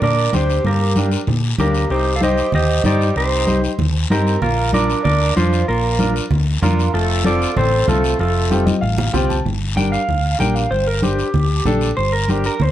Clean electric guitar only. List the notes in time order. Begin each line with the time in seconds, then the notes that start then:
0.03 A#4 D5
0.34 G4 C5
0.66 G4 A#4
1.60 G4 A#4
1.91 G4 C5
2.16 F5
2.23 C5 D#5
2.55 C5 D#5
2.86 G4 D5
3.17 G4 C5
4.12 G4 A#4
4.42 F4 A#4
4.74 A#4 D5
5.04 A#4 D5
5.37 F4 C5
5.68 F4 A#4
6.63 F4 A#4
6.94 F4 A4
7.25 A4 D5
7.57 A4 C5
7.88 F4 A4
8.20 F4 A4
9.77 G5
9.92 F5
10.40 G5
10.55 F5
10.71 C5
10.87 A#4
11.03 G4
11.97 C5
12.12 A#4
12.29 G4
12.46 A#4
12.62 C5